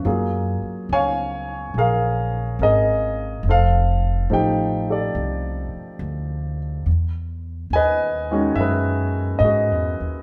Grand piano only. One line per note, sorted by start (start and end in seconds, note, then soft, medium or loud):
0.05 2.42 F#3 soft
0.05 2.42 A#3 soft
0.05 2.42 F4 soft
0.05 1.76 G#4 medium
0.93 2.56 C#5 medium
0.93 1.77 F5 medium
0.93 1.78 G#5 medium
1.78 2.61 G#4 medium
1.78 2.60 A#4 medium
1.78 2.63 F5 medium
2.62 3.41 G#4 medium
2.62 3.41 A#4 medium
2.62 3.42 D#5 medium
3.49 4.89 A4 medium
3.49 5.12 C5 medium
3.49 4.28 F5 medium
4.30 4.81 F3 medium
4.30 4.81 A3 soft
4.30 4.81 D#4 soft
4.30 4.82 G4 medium
4.30 4.90 G5 medium
4.90 6.56 G4 soft
4.90 6.56 A4 soft
4.90 5.99 D5 medium
7.73 8.59 B4 medium
7.73 9.37 D#5 medium
7.73 8.60 G#5 medium
8.31 9.37 D#3 medium
8.31 9.37 G#3 medium
8.31 9.38 C#4 medium
8.31 9.38 F#4 medium
8.56 9.44 E5 medium
8.61 9.43 G#4 medium
8.61 10.22 B4 medium
9.39 10.22 D#5 medium
9.44 10.22 F#4 medium
9.44 10.22 G#4 medium